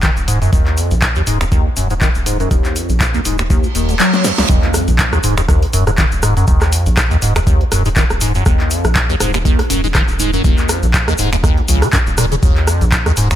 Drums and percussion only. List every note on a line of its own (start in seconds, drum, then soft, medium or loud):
0.02 kick loud
0.02 clap loud
0.02 closed hi-hat medium
0.02 shaker soft
0.17 closed hi-hat soft
0.17 shaker soft
0.28 open hi-hat loud
0.28 shaker medium
0.42 closed hi-hat medium
0.42 shaker soft
0.53 kick loud
0.53 closed hi-hat medium
0.53 shaker soft
0.66 clap soft
0.66 closed hi-hat soft
0.77 open hi-hat loud
0.77 shaker medium
0.91 closed hi-hat medium
0.91 shaker soft
1.02 finger snap medium
1.02 kick loud
1.02 clap loud
1.02 closed hi-hat medium
1.02 shaker soft
1.15 closed hi-hat soft
1.15 shaker soft
1.27 open hi-hat loud
1.27 shaker medium
1.41 finger snap medium
1.41 closed hi-hat medium
1.41 shaker soft
1.52 kick loud
1.52 closed hi-hat medium
1.52 shaker soft
1.77 open hi-hat loud
1.77 shaker medium
1.90 closed hi-hat medium
1.90 shaker soft
2.01 kick loud
2.01 clap loud
2.01 closed hi-hat medium
2.01 shaker medium
2.15 closed hi-hat soft
2.15 shaker soft
2.26 open hi-hat loud
2.26 shaker medium
2.40 closed hi-hat medium
2.40 shaker soft
2.51 kick loud
2.51 closed hi-hat medium
2.51 shaker soft
2.65 clap soft
2.65 closed hi-hat soft
2.65 shaker soft
2.76 open hi-hat loud
2.76 shaker medium
2.89 closed hi-hat medium
2.89 shaker soft
3.01 finger snap medium
3.01 kick loud
3.01 clap loud
3.01 closed hi-hat medium
3.01 shaker medium
3.14 closed hi-hat soft
3.14 shaker soft
3.25 open hi-hat loud
3.25 shaker medium
3.38 finger snap medium
3.38 closed hi-hat medium
3.38 shaker soft
3.50 kick loud
3.50 closed hi-hat medium
3.50 shaker medium
3.63 closed hi-hat soft
3.63 shaker soft
3.75 open hi-hat loud
3.75 shaker medium
3.89 closed hi-hat medium
3.89 shaker soft
4.00 clap loud
4.00 closed hi-hat medium
4.00 shaker medium
4.13 snare soft
4.13 closed hi-hat soft
4.13 shaker soft
4.24 snare medium
4.24 open hi-hat loud
4.24 shaker medium
4.38 snare medium
4.38 closed hi-hat medium
4.38 shaker soft
4.49 kick loud
4.49 closed hi-hat medium
4.49 shaker soft
4.63 clap soft
4.63 closed hi-hat soft
4.74 cross-stick medium
4.74 open hi-hat loud
4.74 shaker loud
4.87 closed hi-hat medium
4.87 shaker soft
4.99 finger snap medium
4.99 kick loud
4.99 clap loud
4.99 closed hi-hat medium
4.99 shaker medium
5.13 cross-stick medium
5.13 closed hi-hat soft
5.13 shaker soft
5.23 open hi-hat loud
5.23 shaker medium
5.37 finger snap medium
5.37 closed hi-hat medium
5.37 shaker soft
5.49 kick loud
5.49 cross-stick medium
5.49 closed hi-hat medium
5.49 shaker medium
5.62 open hi-hat medium
5.73 open hi-hat loud
5.73 shaker medium
5.87 cross-stick medium
5.87 closed hi-hat medium
5.87 shaker soft
5.98 kick loud
5.98 clap loud
5.98 closed hi-hat medium
5.98 shaker soft
6.12 closed hi-hat soft
6.12 shaker soft
6.22 cross-stick medium
6.22 open hi-hat loud
6.22 shaker medium
6.37 closed hi-hat medium
6.37 shaker soft
6.47 kick loud
6.47 closed hi-hat medium
6.47 shaker medium
6.61 cross-stick medium
6.61 clap soft
6.61 closed hi-hat soft
6.61 shaker soft
6.72 open hi-hat loud
6.72 shaker loud
6.86 closed hi-hat medium
6.86 shaker soft
6.97 finger snap medium
6.97 kick loud
6.97 cross-stick medium
6.97 clap loud
6.97 closed hi-hat medium
6.97 shaker medium
7.11 closed hi-hat soft
7.11 shaker soft
7.22 open hi-hat loud
7.22 shaker medium
7.36 finger snap medium
7.36 cross-stick medium
7.36 closed hi-hat medium
7.36 shaker soft
7.47 kick loud
7.47 closed hi-hat medium
7.47 shaker medium
7.61 closed hi-hat soft
7.72 cross-stick medium
7.72 open hi-hat loud
7.72 shaker loud
7.85 open hi-hat medium
7.85 shaker soft
7.96 kick loud
7.96 clap loud
7.96 closed hi-hat medium
7.96 shaker medium
8.10 cross-stick medium
8.10 closed hi-hat soft
8.10 shaker soft
8.21 open hi-hat loud
8.21 shaker loud
8.35 closed hi-hat medium
8.35 shaker soft
8.46 kick loud
8.46 cross-stick medium
8.46 closed hi-hat medium
8.46 shaker medium
8.60 clap soft
8.60 closed hi-hat soft
8.71 open hi-hat loud
8.71 shaker loud
8.85 cross-stick medium
8.85 closed hi-hat medium
8.85 shaker soft
8.96 finger snap medium
8.96 kick loud
8.96 clap loud
8.96 closed hi-hat medium
8.96 shaker medium
9.09 closed hi-hat soft
9.09 shaker soft
9.20 cross-stick medium
9.20 open hi-hat loud
9.20 shaker medium
9.34 finger snap medium
9.34 closed hi-hat medium
9.34 shaker soft
9.45 kick loud
9.45 closed hi-hat medium
9.45 shaker medium
9.59 cross-stick medium
9.59 open hi-hat medium
9.70 open hi-hat loud
9.70 shaker loud
9.84 closed hi-hat medium
9.84 shaker soft
9.95 kick loud
9.95 cross-stick medium
9.95 clap loud
9.95 closed hi-hat medium
9.95 shaker medium
10.08 closed hi-hat soft
10.08 shaker soft
10.19 open hi-hat loud
10.19 shaker loud
10.33 closed hi-hat medium
10.33 shaker soft
10.44 kick loud
10.44 closed hi-hat medium
10.44 shaker medium
10.58 clap soft
10.58 closed hi-hat soft
10.58 shaker soft
10.69 cross-stick medium
10.69 open hi-hat loud
10.69 shaker loud
10.83 closed hi-hat medium
10.83 shaker soft
10.94 finger snap medium
10.94 kick loud
10.94 clap loud
10.94 closed hi-hat medium
10.94 shaker medium
11.08 cross-stick medium
11.08 closed hi-hat soft
11.08 shaker soft
11.18 open hi-hat loud
11.18 shaker medium
11.33 finger snap medium
11.33 closed hi-hat medium
11.33 shaker soft
11.44 kick loud
11.44 cross-stick medium
11.44 closed hi-hat medium
11.44 shaker medium
11.57 closed hi-hat soft
11.68 open hi-hat loud
11.68 shaker loud
11.82 cross-stick medium
11.82 open hi-hat medium
11.82 shaker soft
11.93 kick loud
11.93 clap loud
11.93 closed hi-hat medium
11.93 shaker medium
12.07 closed hi-hat soft
12.07 shaker soft
12.17 cross-stick medium
12.17 open hi-hat loud
12.17 shaker loud
12.32 closed hi-hat medium
12.32 shaker soft
12.43 kick loud
12.43 closed hi-hat medium
12.43 shaker medium
12.56 clap soft
12.56 closed hi-hat soft
12.67 cross-stick medium
12.67 open hi-hat loud
12.67 shaker medium
12.81 closed hi-hat medium
12.81 shaker soft
12.92 finger snap medium
12.92 kick loud
12.92 clap loud
12.92 closed hi-hat medium
12.92 shaker medium
13.06 cross-stick medium
13.06 closed hi-hat soft
13.06 shaker soft
13.17 open hi-hat loud
13.17 shaker medium
13.31 finger snap medium
13.31 closed hi-hat medium
13.31 shaker soft